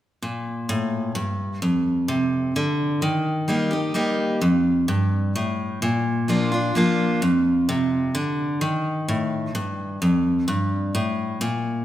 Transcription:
0.22 A#2
0.69 A2
1.15 G2
1.62 F2
2.08 C3
2.56 D3
3.02 D#3
3.48 G3 A#3 D#4 G4
3.71 D#4 G4
3.94 G3 A#3 D#4 G4
4.41 F2
4.88 G2
5.36 A2
5.82 A#2
6.28 F3 A#3 D4 F4
6.52 D4 F4
6.75 F3 A#3 D4 F4
7.22 F2
7.69 C3
8.15 D3
8.61 D#3
9.08 A2
9.55 G2
10.02 F2
10.48 G2
10.95 A2
11.41 A#2

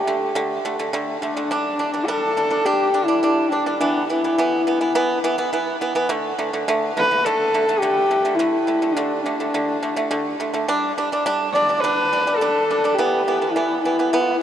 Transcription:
Already playing: G4
0.07 D3 A3
0.35 D3 A3
0.65 D3 A3
0.79 D3 A3
0.93 D3 A3
1.20 D3 A3 D4
1.37 D3 A3
1.51 G3 D4
1.79 G3 D4
1.94 G3 D4
2.06 G3 D4 A4
2.37 G3 D4
2.50 G3 D4
2.65 G3 D4 G4
2.94 G3 D4
3.05 G3 D4 E4
3.23 G3 D4
3.49 G3 D4
3.66 G3 D4
3.79 E3 B3 D4
4.10 E3 B3 E4
4.24 E3 B3
4.38 E3 B3
4.67 E3 B3
4.81 E3 B3
4.95 E3 B3
5.24 E3 B3
5.38 E3 B3
5.53 E3 B3
5.81 E3 B3
5.95 E3 B3
6.09 D3 A3
6.39 D3 A3
6.53 D3 A3
6.68 D3 A3
6.97 D3 A3 B4
7.11 D3 A3
7.25 D3 A3 A4
7.54 D3 A3
7.69 D3 A3
7.80 D3 A3 G4
8.11 D3 A3
8.25 D3 A3
8.35 E4
8.39 D3 A3
8.67 D3 A3
8.82 D3 A3
8.94 D3 A3 D4
9.23 D3 A3 D4
9.40 D3 A3
9.54 D3 A3
9.83 D3 A3
9.96 D3 A3
10.11 D3 A3
10.40 D3 A3
10.54 D3 A3
10.68 G3 D4
10.98 G3 D4
11.12 G3 D4
11.26 G3 D4
11.52 G3 D4 D5
11.69 G3 D4
11.80 G3 B4
11.84 D4
12.13 G3 D4
12.27 G3 D4
12.36 A4
12.41 G3 D4
12.70 G3 D4
12.84 G3 D4
12.94 G4
12.98 E3 B3
13.28 E3 B3
13.41 E3 B3
13.51 E4
13.56 E3 B3
13.81 E4
13.85 E3 B3
13.99 E3 B3
14.13 E3 B3

